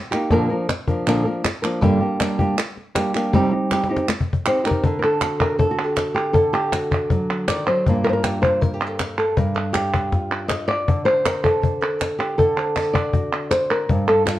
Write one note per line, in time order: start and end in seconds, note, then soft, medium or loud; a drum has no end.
0.11 0.31 A#3 soft
0.11 0.30 D#4 medium
0.11 0.30 G4 medium
0.11 cajon slap soft
0.11 clap medium
0.31 0.49 A#2 medium
0.31 0.49 D3 medium
0.31 0.49 F3 loud
0.31 0.49 A#3 loud
0.31 0.49 D4 medium
0.31 0.48 A#4 loud
0.31 cajon bass loud
0.31 cajon slap soft
0.49 0.68 F3 soft
0.49 0.68 A#3 medium
0.49 0.68 D4 medium
0.49 0.68 A#4 medium
0.69 muted nylon-string guitar stroke medium
0.69 cajon slap loud
0.69 clap medium
0.87 1.06 F3 soft
0.87 1.06 A#3 soft
0.87 1.06 D4 medium
0.87 1.05 A#4 medium
0.87 cajon bass medium
1.06 1.24 A#2 medium
1.06 1.25 D3 medium
1.06 1.25 F3 medium
1.06 1.25 A#3 medium
1.06 1.24 D4 medium
1.06 1.24 A#4 medium
1.06 clap medium
1.25 1.43 F3 soft
1.25 1.43 A#3 soft
1.25 1.44 D4 soft
1.25 1.43 A#4 soft
1.25 cajon slap soft
1.44 muted nylon-string guitar stroke medium
1.44 cajon slap medium
1.44 clap medium
1.62 1.82 F3 soft
1.62 1.81 A#3 medium
1.62 1.81 D4 medium
1.62 1.81 A#4 medium
1.62 clap medium
1.81 2.00 G2 medium
1.81 2.00 D3 medium
1.81 2.00 G3 loud
1.81 2.00 A#3 medium
1.81 2.00 D4 loud
1.81 1.99 G4 medium
1.81 cajon bass loud
2.00 2.18 G3 soft
2.00 2.19 A#3 medium
2.00 2.19 D4 medium
2.00 2.19 G4 medium
2.20 2.38 G3 medium
2.20 2.38 A#3 medium
2.20 2.38 D4 medium
2.20 2.37 G4 medium
2.20 cajon slap loud
2.20 clap medium
2.38 2.57 G3 soft
2.38 2.57 A#3 medium
2.38 2.57 D4 medium
2.38 2.57 G4 medium
2.38 cajon bass medium
2.57 muted nylon-string guitar stroke medium
2.57 clap medium
2.77 cajon slap soft
2.95 3.14 G3 soft
2.95 3.14 A#3 soft
2.95 3.14 D4 soft
2.95 3.13 G4 medium
2.95 cajon slap loud
2.95 clap medium
3.14 3.32 G3 soft
3.14 3.33 A#3 medium
3.14 3.33 D4 soft
3.14 3.32 G4 medium
3.14 cajon slap soft
3.14 clap medium
3.33 3.51 C3 medium
3.33 3.51 G3 loud
3.33 3.52 C4 loud
3.33 3.51 D#4 loud
3.33 3.50 G4 loud
3.33 cajon bass loud
3.51 3.70 C4 soft
3.51 3.70 D#4 soft
3.51 3.70 G4 medium
3.70 3.89 G3 medium
3.70 3.89 C4 medium
3.70 3.89 D#4 medium
3.70 3.88 G4 medium
3.70 cajon slap medium
3.70 clap medium
3.84 cajon slap medium
3.89 4.08 C4 soft
3.89 4.08 D#4 medium
3.89 4.08 G4 medium
3.97 cajon slap loud
4.08 muted nylon-string guitar stroke medium
4.08 cajon slap medium
4.08 clap medium
4.21 cajon bass medium
4.33 cajon bass medium
4.46 4.65 C4 soft
4.46 4.64 D#4 soft
4.46 4.63 G4 medium
4.46 4.66 C5 medium
4.46 clap medium
4.64 4.84 C4 soft
4.64 4.83 D#4 soft
4.64 4.83 G4 medium
4.64 4.98 A#4 medium
4.64 clap medium
4.71 cajon bass medium
4.84 6.34 D3 medium
4.84 cajon bass medium
4.99 5.03 A#4 medium
5.04 5.40 A4 medium
5.22 5.70 F#4 medium
5.22 cajon slap medium
5.22 clap medium
5.40 5.58 A#4 medium
5.40 cajon bass medium
5.40 clap soft
5.59 5.84 A4 medium
5.59 cajon bass medium
5.71 6.22 F#4 medium
5.84 5.96 G4 medium
5.96 6.14 A4 medium
5.96 cajon slap medium
5.96 clap medium
6.14 6.34 G4 medium
6.14 cajon slap soft
6.14 clap soft
6.33 7.84 D3 medium
6.33 6.91 A4 medium
6.33 cajon bass loud
6.53 6.73 G4 medium
6.72 7.86 F#4 medium
6.72 cajon slap loud
6.72 clap medium
6.91 cajon bass medium
6.91 clap medium
7.10 7.49 F#3 soft
7.10 cajon bass medium
7.48 7.68 D#3 medium
7.48 7.66 D5 loud
7.48 cajon slap loud
7.48 clap medium
7.67 7.87 F#3 medium
7.67 8.04 C5 medium
7.67 clap soft
7.86 9.36 G2 medium
7.86 9.36 A#3 soft
7.86 10.14 D4 soft
7.86 8.87 F4 medium
7.86 cajon bass loud
8.04 8.09 A#4 loud
8.09 8.13 C5 medium
8.13 8.23 A#4 medium
8.23 8.41 G4 medium
8.23 cajon slap medium
8.23 clap medium
8.42 8.61 C5 medium
8.42 cajon bass medium
8.61 8.74 A#4 medium
8.61 cajon bass medium
8.74 8.99 G4 medium
8.87 9.17 A4 medium
8.99 9.36 A#4 loud
8.99 cajon slap medium
8.99 clap medium
9.18 9.37 A4 medium
9.37 10.88 G2 medium
9.37 9.54 A#4 medium
9.37 cajon bass loud
9.54 10.12 A4 loud
9.73 10.48 G4 medium
9.73 cajon slap medium
9.73 clap medium
9.94 cajon bass medium
9.94 clap soft
10.13 10.86 F4 soft
10.13 cajon bass medium
10.13 cajon slap soft
10.48 10.67 D#5 loud
10.48 cajon slap loud
10.48 clap medium
10.68 11.05 D5 loud
10.88 12.36 D3 medium
10.88 cajon bass medium
11.05 11.60 C5 loud
11.05 cajon slap soft
11.26 11.43 A#4 medium
11.26 cajon slap loud
11.26 clap medium
11.43 11.81 A4 medium
11.43 cajon bass medium
11.61 12.18 C5 loud
11.61 cajon bass medium
11.81 11.99 A#4 medium
11.99 12.37 A4 medium
11.99 cajon slap medium
11.99 clap medium
12.18 12.38 G4 medium
12.18 cajon slap soft
12.18 clap soft
12.38 13.87 D3 medium
12.38 12.95 A4 medium
12.38 cajon bass medium
12.56 12.93 C5 loud
12.76 cajon slap loud
12.76 clap medium
12.93 13.50 D5 loud
12.93 cajon bass medium
12.93 clap medium
13.13 13.87 F#4 soft
13.13 cajon bass medium
13.51 13.89 C5 medium
13.51 cajon slap loud
13.51 clap medium
13.70 14.07 A#4 medium
13.70 clap medium
13.89 14.39 G2 medium
13.89 cajon bass loud
14.08 14.25 A4 loud
14.26 14.39 F4 medium
14.26 cajon slap medium
14.26 clap medium